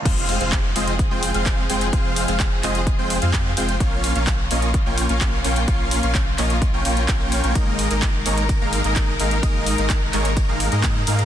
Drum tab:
CC |x---------------|----------------|----------------|----------------|
RD |----------------|----------------|----------------|----------------|
HH |x-oxx-oxx-oxx-ox|x-oxx-oxx-oxx-ox|x-oxx-oxx-oxx-ox|x-oxx-oxx-oxx-ox|
CP |----x-------x---|----x-x-----x---|----x-------x---|----x-x-----x---|
BD |o---o---o---o---|o---o---o---o---|o---o---o---o---|o---o---o---o---|

CC |----------------|----------------|
RD |x---x---x---x---|x---x---x---x---|
HH |x-oxx-oxx-oxx-ox|x-oxx-oxx-oxx-ox|
CP |----x-------x---|----x-x-----x---|
BD |o---o---o---o---|o---o---o---o---|